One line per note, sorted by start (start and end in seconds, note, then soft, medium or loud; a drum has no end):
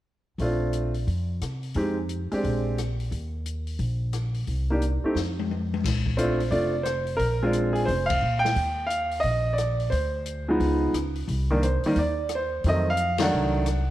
0.38 1.04 A#1 medium
0.38 0.91 A3 soft
0.38 0.91 C4 soft
0.38 0.92 D4 soft
0.38 0.92 F4 soft
0.38 kick soft
0.38 open hi-hat soft
0.73 closed hi-hat soft
0.94 open hi-hat soft
1.07 1.39 F2 medium
1.07 kick soft
1.07 open hi-hat soft
1.41 1.73 C3 medium
1.41 cross-stick soft
1.41 closed hi-hat soft
1.63 open hi-hat soft
1.74 2.27 F2 medium
1.74 1.95 G#3 soft
1.74 1.95 C4 soft
1.74 1.96 D#4 soft
1.74 1.96 G4 soft
1.74 kick soft
1.74 open hi-hat soft
2.09 closed hi-hat soft
2.32 2.76 G#3 soft
2.32 2.76 C4 soft
2.32 2.76 D4 soft
2.32 2.77 G4 soft
2.32 muted upright bass stroke soft
2.32 open hi-hat soft
2.44 3.09 A#1 medium
2.44 kick soft
2.44 open hi-hat soft
2.78 cross-stick soft
2.78 closed hi-hat soft
3.00 open hi-hat soft
3.11 3.76 D#2 medium
3.11 kick soft
3.11 open hi-hat soft
3.46 closed hi-hat soft
3.67 open hi-hat soft
3.79 4.44 A#1 medium
3.79 kick soft
3.79 open hi-hat soft
4.13 cross-stick soft
4.13 closed hi-hat soft
4.34 open hi-hat soft
4.47 5.00 C2 medium
4.47 kick soft
4.47 open hi-hat soft
4.70 4.81 A#3 soft
4.70 4.82 D4 soft
4.70 4.82 D#4 soft
4.70 4.82 G4 soft
4.82 closed hi-hat soft
5.03 5.15 A3 soft
5.03 5.16 C4 soft
5.03 5.16 D#4 soft
5.03 5.16 G4 medium
5.03 muted upright bass stroke soft
5.15 5.80 F2 medium
5.15 snare soft
5.39 high tom soft
5.51 high tom soft
5.74 high tom medium
5.84 6.49 A#1 medium
5.84 kick medium
5.84 snare soft
5.84 ride medium
6.06 kick soft
6.17 6.37 A3 medium
6.17 6.38 C4 medium
6.17 6.38 D4 medium
6.17 6.38 F4 medium
6.17 6.53 C5 medium
6.17 closed hi-hat soft
6.40 open hi-hat soft
6.51 7.16 F1 medium
6.51 6.72 A3 soft
6.51 6.72 C4 soft
6.51 6.72 D4 soft
6.51 6.72 F4 medium
6.51 6.83 D5 medium
6.51 kick soft
6.51 open hi-hat soft
6.83 7.20 C5 medium
6.83 cross-stick medium
6.83 closed hi-hat soft
7.07 open hi-hat soft
7.17 7.84 A#1 medium
7.17 7.50 A#4 medium
7.17 kick soft
7.17 open hi-hat soft
7.43 7.86 G#3 medium
7.43 7.87 C4 medium
7.43 7.87 D4 medium
7.43 7.87 F4 medium
7.53 closed hi-hat soft
7.73 7.87 G#4 medium
7.73 open hi-hat soft
7.85 8.20 F1 medium
7.85 8.07 C5 medium
7.85 kick soft
7.85 open hi-hat soft
8.06 8.43 F5 medium
8.06 kick medium
8.06 ride medium
8.22 8.54 A#2 medium
8.39 8.85 G5 loud
8.45 snare soft
8.56 9.21 D#2 medium
8.56 kick soft
8.56 open hi-hat soft
8.87 9.20 F5 medium
8.87 closed hi-hat soft
9.11 open hi-hat soft
9.20 9.89 A#1 medium
9.20 9.54 D#5 medium
9.20 kick soft
9.20 open hi-hat soft
9.53 9.91 D5 medium
9.58 cross-stick medium
9.58 closed hi-hat soft
9.80 open hi-hat soft
9.90 10.57 D2 medium
9.90 10.55 C5 medium
9.90 kick soft
9.90 open hi-hat soft
10.26 closed hi-hat soft
10.48 10.92 F3 medium
10.48 10.92 G#3 medium
10.48 10.93 B3 medium
10.48 10.93 D#4 medium
10.60 10.92 C#2 medium
10.60 kick soft
10.60 open hi-hat soft
10.93 11.25 C#2 medium
10.93 cross-stick soft
10.93 closed hi-hat soft
11.15 open hi-hat soft
11.28 11.80 C2 medium
11.28 kick soft
11.28 open hi-hat soft
11.51 11.62 D#3 medium
11.51 11.62 G3 medium
11.51 11.62 A#3 medium
11.51 11.62 D4 medium
11.63 11.95 C5 medium
11.63 closed hi-hat soft
11.83 11.96 D#3 medium
11.83 11.96 G3 medium
11.83 11.96 A#3 medium
11.83 11.97 D#4 medium
11.83 muted upright bass stroke soft
11.83 open hi-hat soft
11.96 12.61 D#2 medium
11.96 12.33 D5 medium
11.96 kick soft
11.96 open hi-hat soft
12.29 cross-stick medium
12.29 closed hi-hat soft
12.35 12.68 C5 medium
12.64 13.29 F2 medium
12.64 12.85 D#3 soft
12.64 12.85 F#3 soft
12.64 12.85 A3 soft
12.64 kick soft
12.64 open hi-hat soft
12.68 12.86 C4 medium
12.68 12.87 D#5 medium
12.90 13.20 F5 medium
12.97 closed hi-hat soft
13.18 13.64 D#3 medium
13.18 13.64 F#3 medium
13.18 13.65 A3 medium
13.18 13.65 D4 medium
13.18 13.85 F#5 medium
13.18 snare medium
13.18 ride medium
13.32 13.90 C2 medium
13.66 cross-stick medium
13.66 closed hi-hat soft